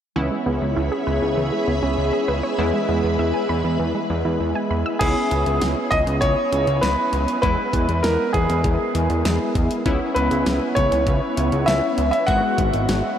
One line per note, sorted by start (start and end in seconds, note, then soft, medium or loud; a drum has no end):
0.16 0.30 C#2 loud
0.16 0.29 E3 medium
0.16 2.54 B3 medium
0.16 2.54 C#4 medium
0.16 2.54 E4 medium
0.16 4.97 G#4 medium
0.16 2.56 C#5 medium
0.16 4.97 E5 medium
0.16 4.97 B5 medium
0.31 0.45 G#3 medium
0.46 0.60 C#2 medium
0.46 0.60 B3 medium
0.62 0.75 C#2 medium
0.76 0.90 C#2 loud
0.76 0.90 E4 medium
0.92 1.05 G#4 medium
1.07 1.21 C#2 loud
1.07 1.20 B4 medium
1.22 1.36 C#2 loud
1.37 1.51 C#2 loud
1.37 1.51 E3 medium
1.52 1.66 G#3 medium
1.68 1.81 C#2 medium
1.68 1.81 B3 medium
1.83 1.96 C#2 medium
1.83 1.96 C#4 medium
1.98 2.12 C#2 loud
2.13 2.27 G#4 medium
2.28 2.42 C#2 medium
2.28 2.42 B4 medium
2.43 2.57 C#5 medium
2.58 2.72 E2 loud
2.58 2.72 E3 medium
2.58 4.97 G#3 medium
2.58 4.97 B3 medium
2.58 4.97 E4 medium
2.58 4.98 B4 medium
2.74 2.87 G#3 medium
2.89 3.02 E2 loud
2.89 3.02 B3 medium
3.04 3.18 E2 medium
3.19 3.33 E2 loud
3.19 3.33 E5 medium
3.34 3.48 G#5 medium
3.49 3.63 E2 loud
3.49 3.63 B5 medium
3.64 3.78 E2 loud
3.80 3.93 E2 loud
3.80 3.93 E3 medium
3.95 4.08 G#3 medium
4.10 4.24 E2 loud
4.10 4.23 B3 medium
4.25 4.39 E2 loud
4.25 4.39 E4 medium
4.40 4.54 E2 loud
4.55 4.69 G#5 medium
4.71 4.84 E2 medium
4.71 4.84 B5 medium
4.86 4.99 E6 medium
4.99 5.15 C#2 loud
4.99 7.39 B3 medium
4.99 7.39 C#4 medium
4.99 7.39 E4 medium
4.99 5.94 G#4 medium
4.99 kick loud
4.99 closed hi-hat medium
4.99 crash medium
5.31 5.45 C#2 medium
5.31 closed hi-hat medium
5.46 5.60 C#2 medium
5.46 closed hi-hat medium
5.61 5.75 C#2 loud
5.61 snare loud
5.61 closed hi-hat medium
5.91 6.05 C#2 loud
5.91 5.98 D#5 loud
5.91 kick medium
5.91 closed hi-hat medium
6.07 6.21 C#2 loud
6.07 closed hi-hat medium
6.21 6.36 C#2 loud
6.21 6.84 C#5 loud
6.21 kick medium
6.21 closed hi-hat medium
6.52 6.66 C#2 medium
6.52 closed hi-hat medium
6.67 6.81 C#2 loud
6.67 closed hi-hat medium
6.81 6.96 C#2 loud
6.81 7.39 B4 medium
6.81 snare loud
6.81 closed hi-hat medium
7.13 7.27 C#2 medium
7.13 closed hi-hat medium
7.28 closed hi-hat medium
7.42 7.57 E2 loud
7.42 9.82 G#3 medium
7.42 9.82 B3 medium
7.42 9.82 E4 medium
7.42 7.99 B4 loud
7.42 kick loud
7.42 closed hi-hat medium
7.73 7.87 E2 loud
7.73 kick medium
7.73 closed hi-hat medium
7.89 8.02 E2 loud
7.89 closed hi-hat medium
8.03 8.18 E2 loud
8.03 8.31 A#4 medium
8.03 snare loud
8.03 closed hi-hat medium
8.33 8.48 E2 loud
8.33 8.90 G#4 medium
8.33 kick medium
8.33 closed hi-hat medium
8.49 8.63 E2 loud
8.49 closed hi-hat medium
8.64 8.78 E2 loud
8.64 kick medium
8.64 closed hi-hat medium
8.95 9.08 E2 loud
8.95 closed hi-hat medium
9.10 9.24 E2 medium
9.10 closed hi-hat soft
9.25 9.39 E2 loud
9.25 snare loud
9.25 closed hi-hat medium
9.55 9.69 E2 medium
9.55 kick medium
9.55 closed hi-hat medium
9.71 closed hi-hat medium
9.86 9.99 C#2 loud
9.86 12.24 B3 medium
9.86 12.24 C#4 medium
9.86 12.24 E4 medium
9.86 kick loud
9.86 closed hi-hat medium
10.15 10.30 C#2 loud
10.15 10.78 B4 medium
10.15 closed hi-hat medium
10.31 10.45 C#2 loud
10.31 closed hi-hat medium
10.46 10.60 C#2 loud
10.46 snare loud
10.46 closed hi-hat medium
10.75 10.90 C#2 medium
10.75 11.70 C#5 medium
10.75 kick medium
10.75 closed hi-hat medium
10.92 11.05 C#2 loud
10.92 closed hi-hat medium
11.07 11.20 C#2 loud
11.07 kick medium
11.07 closed hi-hat medium
11.37 11.51 C#2 loud
11.37 closed hi-hat medium
11.52 11.66 C#2 loud
11.52 closed hi-hat medium
11.66 11.81 C#2 loud
11.66 12.09 E5 medium
11.66 snare loud
11.66 closed hi-hat medium
11.98 12.11 C#2 medium
11.98 closed hi-hat medium
12.11 12.28 E5 medium
12.11 closed hi-hat medium
12.27 12.42 G#1 loud
12.27 13.19 G#3 medium
12.27 13.19 B3 medium
12.27 13.19 F#4 medium
12.27 13.14 F#5 loud
12.27 kick loud
12.27 closed hi-hat medium
12.58 12.72 G#1 loud
12.58 kick medium
12.58 closed hi-hat medium
12.74 12.87 G#1 loud
12.74 closed hi-hat medium
12.89 13.02 G#1 loud
12.89 snare loud
12.89 closed hi-hat medium